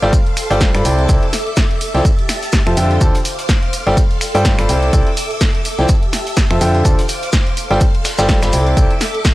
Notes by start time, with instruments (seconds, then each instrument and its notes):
Already playing: string machine A4 F5 C6
0.02 fm bass G1, grand piano G3 F4 A4 C5 D5 G5, snare, closed hi-hat
0.13 kick, closed hi-hat, shaker
0.27 closed hi-hat
0.37 finger snap, open hi-hat, shaker
0.51 fm bass G1, grand piano G3 F4 A4 C5 D5 G5, closed hi-hat
0.61 kick, snare, closed hi-hat, shaker
0.74 fm bass G2, grand piano F4 A4 C5 D5 B5, finger snap, closed hi-hat
0.85 fm bass C2, grand piano C3 E4 A4 C5 D5 G5, string machine E5 D6, open hi-hat, shaker
0.99 closed hi-hat
1.09 fm bass C2, grand piano E4 A4 C5 D5 G5, kick, closed hi-hat, shaker
1.23 closed hi-hat
1.33 snare, open hi-hat, shaker
1.47 closed hi-hat
1.57 kick, snare, closed hi-hat, shaker
1.71 closed hi-hat
1.81 open hi-hat, shaker
1.94 fm bass C2, grand piano F3 E4 A4 C5 D5 G5, snare, closed hi-hat
2.05 string machine G4 A5, kick, closed hi-hat, shaker
2.19 closed hi-hat
2.29 finger snap, snare, open hi-hat, shaker
2.42 closed hi-hat
2.52 kick, snare, closed hi-hat, shaker
2.67 fm bass F2, grand piano F3 F4 A4 C5 E5 A5, finger snap, closed hi-hat
2.77 fm bass F2, grand piano D3 F4 A4 C5 E5 G5, open hi-hat, shaker
2.91 closed hi-hat
3.01 fm bass D2, grand piano D3 F4 A4 C5 D5 A5, string machine C5 F5 D6, kick, closed hi-hat, shaker
3.15 closed hi-hat
3.25 open hi-hat, shaker
3.39 closed hi-hat
3.49 kick, snare, closed hi-hat, shaker
3.63 closed hi-hat
3.73 string machine A4 C6, open hi-hat, shaker
3.87 fm bass G1, grand piano G3 F4 A4 C5 D5 G5, snare, closed hi-hat
3.97 kick, closed hi-hat, shaker
4.11 closed hi-hat
4.21 finger snap, open hi-hat, shaker
4.35 fm bass G2, grand piano G3 F4 A4 C5 D5 G5, closed hi-hat
4.44 kick, snare, closed hi-hat, shaker
4.59 fm bass G1, grand piano F4 A4 C5 D5 B5, finger snap, closed hi-hat
4.69 fm bass C2, grand piano C3 E4 A4 C5 D5 G5, string machine E5 D6, open hi-hat, shaker
4.83 closed hi-hat
4.93 fm bass C2, grand piano C3 E4 A4 C5 D5 G5, kick, closed hi-hat, shaker
5.07 closed hi-hat
5.17 open hi-hat, shaker
5.31 closed hi-hat
5.41 kick, snare, closed hi-hat, shaker
5.55 closed hi-hat
5.65 open hi-hat, shaker
5.79 fm bass C2, grand piano F3 E4 A4 C5 D5 G5, snare, closed hi-hat
5.89 string machine G4 E5 A5, kick, closed hi-hat, shaker
6.03 closed hi-hat
6.13 finger snap, snare, open hi-hat, shaker
6.27 closed hi-hat
6.37 kick, snare, closed hi-hat, shaker
6.51 fm bass F2, grand piano F3 F4 A4 C5 E5 A5, finger snap, closed hi-hat
6.61 fm bass F2, grand piano D3 F4 A4 C5 E5 G5, open hi-hat, shaker
6.75 closed hi-hat
6.85 fm bass D2, grand piano D3 F4 A4 C5 D5 A5, string machine C5 F5 D6, kick, closed hi-hat, shaker
6.99 closed hi-hat
7.09 open hi-hat, shaker
7.23 closed hi-hat
7.33 kick, snare, closed hi-hat, shaker
7.47 closed hi-hat
7.57 string machine A4 F5 C6, open hi-hat, shaker
7.71 fm bass G1, grand piano G3 F4 A4 C5 D5 G5, snare, closed hi-hat
7.81 kick, closed hi-hat, shaker
7.95 closed hi-hat
8.04 finger snap, snare, open hi-hat, shaker
8.18 fm bass G1, grand piano G3 F4 A4 C5 D5 G5, snare, closed hi-hat, shaker
8.29 kick, snare, closed hi-hat, shaker
8.42 fm bass G1, grand piano F4 A4 C5 D5 B5, finger snap, snare, closed hi-hat, shaker
8.53 fm bass C2, grand piano C3 E4 A4 C5 D5 G5, string machine E5 D6, open hi-hat, shaker
8.67 closed hi-hat
8.77 fm bass C2, grand piano C3 E4 A4 C5 D5 G5, kick, closed hi-hat, shaker
8.91 closed hi-hat
9.01 snare, open hi-hat, shaker
9.15 closed hi-hat
9.25 kick, snare, closed hi-hat, shaker